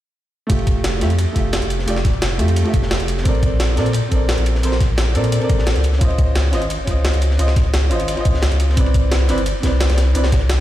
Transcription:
0.47 F1 A3 F4, kick, closed hi-hat, ride
0.51 G4 E5
0.59 ride
0.67 kick, closed hi-hat, ride
0.76 F1
0.84 snare, closed hi-hat, ride
1.00 F2 A3 F4 G4 E5, snare, closed hi-hat, ride
1.10 closed hi-hat
1.18 closed hi-hat, ride
1.33 F1 A3 F4, kick, closed hi-hat, ride
1.37 G4 E5
1.53 snare, closed hi-hat, ride
1.62 F1, closed hi-hat
1.70 closed hi-hat, ride
1.79 snare
1.86 F1 A3 F4 G4 D5, closed hi-hat, ride
1.97 snare
2.05 kick, snare, closed hi-hat, ride
2.14 F1
2.22 snare, closed hi-hat, ride
2.38 F2 A3 F4 G4 E5, closed hi-hat, ride
2.48 closed hi-hat, ride
2.56 closed hi-hat, ride
2.62 A3 F4, ride
2.67 G4 E5
2.74 F1, kick, closed hi-hat, ride
2.82 snare
2.91 snare, closed hi-hat, ride
3.00 F1, closed hi-hat
3.08 closed hi-hat, ride
3.18 snare
3.22 A#1 C4 A4, kick, closed hi-hat, ride
3.26 A#4 D5
3.35 ride
3.43 kick, closed hi-hat, ride
3.51 A#1
3.60 snare, closed hi-hat, ride
3.76 A#2 C4 A4 A#4 D5, snare, closed hi-hat, ride
3.86 closed hi-hat
3.93 closed hi-hat, ride
4.09 A#1 C4 A4, kick, closed hi-hat, ride
4.13 A#4 D5
4.29 snare, closed hi-hat, ride
4.38 A#1, closed hi-hat
4.46 closed hi-hat, ride
4.55 snare
4.62 A#1 C4 A4 A#4 C5, closed hi-hat, ride
4.72 snare
4.81 kick, snare, closed hi-hat, ride
4.89 A#1
4.98 snare, closed hi-hat, ride
5.14 A#2 C4 A4 A#4 D5, closed hi-hat, ride
5.24 closed hi-hat, ride
5.32 closed hi-hat, ride
5.38 C4 A4, ride
5.42 A#4 D5
5.50 A#1, kick, closed hi-hat, ride
5.58 snare
5.67 snare, closed hi-hat, ride
5.75 C#2, closed hi-hat
5.84 closed hi-hat, ride
5.93 snare
5.98 C#2 C#4 F4, kick, closed hi-hat, ride
6.02 C5 D#5
6.10 ride
6.18 kick, closed hi-hat, ride
6.27 C#2
6.35 snare, closed hi-hat, ride
6.51 G#1 C#4 F4 C5 D#5, snare, closed hi-hat, ride
6.62 closed hi-hat
6.70 closed hi-hat, ride
6.84 C#2 C#4 F4, kick, closed hi-hat, ride
6.88 C5 D#5
7.05 snare, closed hi-hat, ride
7.14 C#2, closed hi-hat
7.22 closed hi-hat, ride
7.31 snare
7.38 C#2 C#4 F4 C5 D#5, closed hi-hat, ride
7.48 snare
7.56 kick, snare, closed hi-hat, ride
7.65 C#2
7.74 snare, closed hi-hat, ride
7.89 G#1 C#4 F4 C5 D#5, closed hi-hat, ride
8.00 closed hi-hat, ride
8.08 closed hi-hat, ride
8.14 C#4 F4, ride
8.18 C5 D#5
8.25 C#2, kick, closed hi-hat, ride
8.34 snare
8.42 snare, closed hi-hat, ride
8.52 C#2, closed hi-hat
8.60 closed hi-hat, ride
8.69 snare
8.74 C2 C4 E4, kick, closed hi-hat, ride
8.78 B4 D5
8.86 ride
8.94 kick, closed hi-hat, ride
9.03 C2
9.12 snare, closed hi-hat, ride
9.27 G1 C4 E4 B4 D5, snare, closed hi-hat, ride
9.38 closed hi-hat
9.46 closed hi-hat, ride
9.60 C2 C4 E4, kick, snare, closed hi-hat, ride
9.64 B4 D5
9.80 snare, closed hi-hat, ride
9.89 C2, snare, closed hi-hat, ride
9.97 snare, closed hi-hat, ride
10.13 C2 C4 E4 B4 D5, closed hi-hat, ride
10.24 snare, ride
10.32 kick, snare, closed hi-hat, ride
10.41 C2
10.50 snare, closed hi-hat, ride

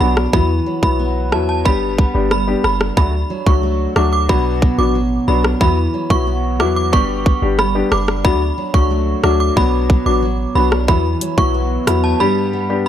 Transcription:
Already playing: B2 F#3 B3
0.00 B1 F#3 B3 D4 F#4 B5
0.17 cross-stick
0.33 E2 E3 F#3 B3 E4 F#4 B5, kick
0.66 F#3
0.83 B1 F#3 B3 E4 F#4 B5, kick
0.99 B3
1.32 E2 F#3 B3 E4 F#4 A5, cross-stick
1.49 A5
1.65 G1 G3 B3 D4 G4 B5, kick
1.98 B3, kick
2.14 G1 G3 B3 D4 G4
2.31 G3 B5, cross-stick
2.47 G3 B3 D4 G4
2.64 F#1 D4 B5, cross-stick
2.81 cross-stick
2.97 D2 F#3 A3 D4 F#4 B5, kick
3.30 F#3
3.46 C#2 F#3 A3 D4 F#4 C#6, kick
3.63 A3
3.96 D2 F#3 A3 D4 F#4 D6, cross-stick
4.13 D6
4.29 B1 B2 F#3 B3 D4 F#4 B5, kick
4.62 B3, kick
4.78 A1 F#3 B3 D4 F#4 D6
4.95 F#3
5.28 B1 F#3 B3 D4 F#4 B5
5.45 cross-stick
5.61 E2 E3 F#3 B3 E4 F#4 B5, kick
5.94 F#3
6.10 B1 F#3 B3 E4 F#4 C#6, kick
6.27 B3
6.59 E2 F#3 B3 E4 F#4 D6, cross-stick
6.76 D6
6.92 G1 G3 B3 D4 G4 C#6, kick
7.26 B3, kick
7.42 G1 G3 B3 D4 G4
7.59 G3 B5, cross-stick
7.75 G3 B3 D4 G4
7.92 F#1 D4 D6, cross-stick
8.08 cross-stick
8.24 D2 F#3 A3 D4 F#4 B5, kick
8.58 F#3
8.74 C#2 F#3 A3 D4 F#4 C#6, kick
8.91 A3
9.23 D2 F#3 A3 D4 F#4 D6, cross-stick
9.40 D6
9.56 B1 B2 F#3 B3 D4 F#4 B5, kick
9.90 B3, kick
10.06 A1 F#3 B3 D4 F#4 D6
10.22 F#3
10.55 B1 F#3 B3 D4 F#4 B5
10.72 cross-stick
10.88 E2 E3 F#3 B3 E4 F#4 B5, kick
11.21 F#3, closed hi-hat
11.38 B1 F#3 B3 E4 F#4 C#6, kick
11.54 B3
11.87 E2 F#3 B3 E4 F#4 B5, cross-stick, closed hi-hat
12.04 A5
12.20 G2 G3 B3 D4 G4 B5
12.53 B3
12.69 G3 B3 D4 G4

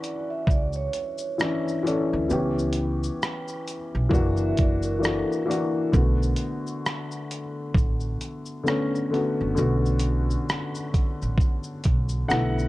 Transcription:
Already playing: E3 C#4 D4 F#4
0.02 D5, closed hi-hat, shaker
0.30 E5
0.47 C#2 D5, kick, shaker
0.73 C#5, shaker
0.93 closed hi-hat, shaker
1.18 shaker
1.38 E3 C#4 D4 E4, cross-stick, shaker
1.68 shaker
1.83 E3 C#4 D4, closed hi-hat, shaker
1.87 A4
2.13 D2
2.29 C#2 E3 B3 C#4, shaker
2.33 G4
2.59 shaker
2.73 closed hi-hat, shaker
3.03 shaker
3.22 cross-stick, shaker
3.48 shaker
3.68 closed hi-hat, shaker
3.95 B1
4.09 F#1 E3 A#3 D4 F#4, kick
4.14 shaker
4.37 E5, shaker
4.57 F#1 D5, kick, closed hi-hat, shaker
4.83 A#4, shaker
4.99 E3 A#3 D4
5.03 F#4 A4, cross-stick, shaker
5.30 A#4, shaker
5.46 E3 A#3 D4
5.50 F#4, closed hi-hat, shaker
5.92 B1 D3 A3 B3 F#4, kick, shaker
6.23 shaker
6.36 closed hi-hat, shaker
6.67 shaker
6.86 cross-stick, shaker
7.11 shaker
7.31 closed hi-hat, shaker
7.74 A1, kick, shaker
8.00 shaker
8.21 closed hi-hat, shaker
8.45 shaker
8.63 D3 A3 B3 C#4, shaker
8.68 cross-stick
8.95 shaker
9.10 D3 A3 B3 F#4, closed hi-hat, shaker
9.40 F#1
9.55 B1 D3 A3 B3, shaker
9.59 F#4
9.86 shaker
9.99 closed hi-hat, shaker
10.30 shaker
10.49 cross-stick, shaker
10.75 shaker
10.94 kick, closed hi-hat, shaker
11.22 A1, shaker
11.38 kick, shaker
11.64 shaker
11.84 B1, kick, closed hi-hat, shaker
12.09 shaker
12.28 B1 D3 A3 B3 E4 A4 F#5, cross-stick, shaker
12.59 shaker

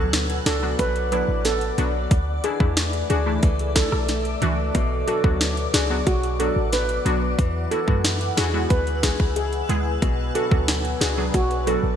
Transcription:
Already playing: D2 B2 F#3 B3 D4 F#4 B4 D5 F#5 D6
0.13 B3, snare, closed hi-hat
0.30 closed hi-hat
0.46 C#2 D4 F#4 A4, snare, closed hi-hat
0.62 F#3 B3 D4 F#4
0.79 B1 F#3 B4, kick, closed hi-hat
0.96 closed hi-hat
1.12 F#3 B3 D4 E4 B4, closed hi-hat
1.28 A1
1.45 B3 A4, snare, closed hi-hat
1.61 closed hi-hat
1.78 B1 F#3 B3 D4 F#4, closed hi-hat
2.11 D2 A4 E5, kick, closed hi-hat
2.44 E3 D4 E4 G#4, closed hi-hat
2.60 E2 E3 A3 D4 E4, kick
2.77 A3, snare, closed hi-hat
2.93 closed hi-hat
3.10 D2 D4 F#4 G#4, closed hi-hat
3.26 E3 A3 D4 E4
3.43 C#2 E3, kick, closed hi-hat
3.59 closed hi-hat
3.75 E3 A3 D4 E4 A4, kick, snare, closed hi-hat
3.92 B1, cross-stick
4.09 A3, snare, closed hi-hat
4.25 closed hi-hat
4.42 C#2 E3 A3 D4 F#4, closed hi-hat
4.75 B1 B2 B4 F#5, kick, closed hi-hat
5.07 F#3 D4 F#4 A4, closed hi-hat
5.24 D2 F#3 B3 D4 F#4, kick
5.41 B3, snare, closed hi-hat
5.57 closed hi-hat
5.74 C#2 D4 F#4 G#4, snare, closed hi-hat
5.90 F#3 B3 D4 F#4
6.07 B1 F#3 F#4, kick, closed hi-hat
6.23 closed hi-hat
6.39 F#3 B3 D4 F#4 A4, closed hi-hat
6.56 A1
6.72 B3 B4, snare, closed hi-hat
6.89 closed hi-hat
7.05 B1 F#3 B3 D4 F#4, closed hi-hat
7.38 E2 E3 G#5 E6, kick, closed hi-hat
7.71 B3 E4 F#4 A4, closed hi-hat
7.88 F#2 G#3 B3 E4 F#4, kick
8.04 E4, snare, closed hi-hat
8.21 closed hi-hat
8.37 E2 E4 F#4 G#4, snare, closed hi-hat
8.54 G#3 B3 E4 F#4
8.70 D2 B3 B4, kick, closed hi-hat
8.87 closed hi-hat
9.03 G#3 B3 E4 F#4 G#4, kick, snare, closed hi-hat
9.20 C#2, kick
9.36 E4 G#4, closed hi-hat
9.53 closed hi-hat
9.69 D2 G#3 B3 E4 G#4, closed hi-hat
10.02 B1 B2 D5 D6, kick, closed hi-hat
10.35 F#3 D4 F#4 A4, closed hi-hat
10.51 D2 F#3 B3 D4 F#4, kick
10.68 B3, snare, closed hi-hat
10.85 closed hi-hat
11.01 C#2 D4 F#4 G#4, snare, closed hi-hat
11.17 F#3 B3 D4 G#4
11.34 B1 F#3 F#4, kick, closed hi-hat
11.51 closed hi-hat
11.67 F#3 B3 D4 F#4 A4, closed hi-hat
11.83 A1

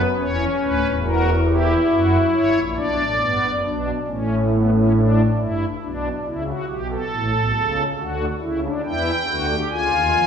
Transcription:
0.18 E1 E2 C#4 C#5
0.61 D1 D2 B4
0.82 E1 E2
1.03 F#4 A#4
1.46 E4 G4
1.90 F#1 F#2 F#4
2.33 G1 G2 C#5
2.55 A#1 A#2
2.76 B1 B2 D4 D5
2.98 A1 A2
3.20 G1 G2 B3
3.42 F#1 F#2
3.63 B1 B2 D4
4.07 A1 A2 C#4
4.51 B3
4.73 C#4
4.95 D4
5.38 G1 G2 E4
5.81 B1 B2 D4
6.25 C#2 C#3 E4
6.47 F#4
6.68 B1 B2 G4
6.90 A4
7.11 A1 A2
7.33 B1 B2
7.55 C#2 C#3
7.98 D2 D3 F#4
8.41 C#2 C#3 E4
8.63 D4
8.85 E2 E3 E4 G5
9.28 D2 D3 F#4
9.49 G4
9.70 C#2 C#3 F4 G#5
9.91 D#2 D#3
10.14 F2 F3

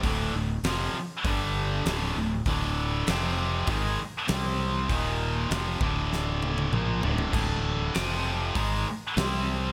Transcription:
0.03 D1 D2 A2 D3, kick, open hi-hat
0.34 D1 D2 A2
0.63 F1 F2 C3 F3, snare, open hi-hat
0.94 muted fingered electric bass stroke, muted distorted electric guitar stroke
1.25 G1 G2 D3 G3, kick, open hi-hat
1.86 D1 D2 A2 D3, snare, open hi-hat
2.17 D1 D2 A2
2.46 D1 D2 A2 D3, kick, open hi-hat
3.07 F1 F2 C3 F3, snare, open hi-hat
3.67 G#1 G#2 D#3 G#3, kick, open hi-hat
4.28 C2 C3 G3 C4, snare, open hi-hat
4.89 D#1 D#2 A#2 D#3, kick, open hi-hat
5.50 F1 F2 C3 F3, snare, open hi-hat
5.80 D1 D2 A2 D3, kick
6.13 snare
6.43 high tom
6.58 high tom
6.72 A#1 A#2 F3 A#3, mid tom
7.02 D1 D2 A2 D3, floor tom
7.18 floor tom
7.32 D1 D2 A2 D3, kick, crash
7.94 F1 F2 C3 F3, snare, open hi-hat
8.55 G#1 G#2 D#3 G#3, kick, open hi-hat
9.17 C2 C3 G3 C4, snare, open hi-hat

